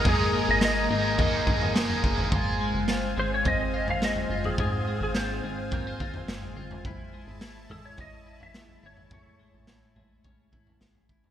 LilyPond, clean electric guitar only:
\new Staff \with { instrumentName = "Clean electric guitar" } { \time 4/4 \key aes \major \tempo 4 = 106 <aes bes ees' aes'>8 bes8 aes'8 bes8 ees'8 aes'8 bes8 aes'8 | f'8 aes8 f'8 aes8 c'8 f'8 aes8 f'8 | <aes, f'>8 aes8 f'8 aes8 bes16 c'16 f'8 aes8 f'8 | e'8 gis8 e'8 gis8 cis'8 e'8 gis8 e'8 |
<a, e'>8 gis8 e'8 gis8 cis'8 e'8 gis8 e'8 | }